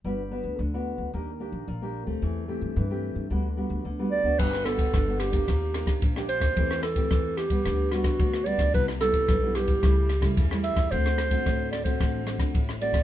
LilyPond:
<<
  \new Staff \with { instrumentName = "Clarinet" } { \time 4/4 \key g \major \tempo 4 = 110 r1 | r2. r8 d''8 | b'8 a'4 g'4. r8 c''8~ | c''8 a'4 g'4 fis'4 d''8 |
b'8 a'4 g'4. r8 e''8 | c''4. d''16 c''4~ c''16 r8 d''8 | }
  \new Staff \with { instrumentName = "Nylon-string guitar" } { \time 4/4 \key g \major << { <b d' fis'>16 r16 <b d' fis'>8 r16 <b d' fis'>8. <bes d' g'>16 r16 <bes d' g'>8 r16 <bes d' g'>8 <a c' g'>16~ | <a c' g'>8 <a c' g'>8. <a c' g'>8. <g b fis'>16 r16 <g b fis'>8 r16 <g b fis'>8 <b d' fis'>16~ | <b d' fis'>8 <b d' fis'>8. <b d' fis'>8 <bes d' g'>8. <bes d' g'>8 r16 <bes d' g'>8. | <a c' g'>8 r16 <a c' g'>4 <g b>8. <g b fis'>8. r16 <g b fis'>8 |
<g b e'>16 r16 <g b e'>8. <g b e'>8. <g a e'>8 r16 <g a e'>8 <g a e'>8. | <a c' fis'>8. <a c' fis'>4 <a c' fis'>8. <a c' fis'>8. r16 <a c' fis'>16 r16 | } \\ { g4 d4 ees4 bes,4 | e4 e4 d4 d4 | g4 d4 ees4 bes,4 | e4 e4 d4 d4 |
c4 g,4 cis4 cis4 | d4 a,4 d4 a,4 | } >> }
  \new Staff \with { instrumentName = "Upright bass" } { \clef bass \time 4/4 \key g \major g,,8. d,16 d,8. d,16 ees,8. bes,,16 bes,,8. d,16 | e,8. g,16 g,8. g,16 d,8. d,16 d,8. d,16 | g,,4 g,,4 ees,8. ees16 bes,,8. ees,16 | e,4 e,4 d,8. d16 d,8. d,16 |
c,4 b,,4 cis,8. cis16 e,8. e,16 | d,4 d,4 a,,8. d16 a,,8. d,16 | }
  \new DrumStaff \with { instrumentName = "Drums" } \drummode { \time 4/4 r4 r4 r4 r4 | r4 r4 r4 r4 | <cymc bd>16 ss16 <cymr ss>16 <bd cymr>16 <bd cymr ss>8 <cymr ss>16 <bd cymr>16 <bd cymr ss>8 <cymr ss>16 <bd cymr ss>16 <bd cymr>16 ss16 cymr16 <bd cymr ss>16 | <bd cymr>16 ss16 <cymr ss>16 <bd cymr>16 <bd cymr ss>8 <cymr ss>16 <bd cymr>16 <bd cymr ss>8 <cymr ss>16 <bd cymr ss>16 <bd cymr>16 ss16 cymr16 <bd cymr ss>16 |
<bd cymr>16 ss16 <cymr ss>16 <bd cymr>16 <bd cymr ss>8 <cymr ss>16 <bd cymr>16 <bd cymr ss>8 <cymr ss>16 <bd cymr ss>16 <bd cymr>16 ss16 cymr16 <bd cymr ss>16 | <bd cymr>16 ss16 <cymr ss>16 <bd cymr>16 <bd cymr ss>8 <cymr ss>16 <bd cymr>16 <bd cymr ss>8 <cymr ss>16 <bd cymr ss>16 <bd cymr>16 ss16 cymr16 <bd cymr ss>16 | }
>>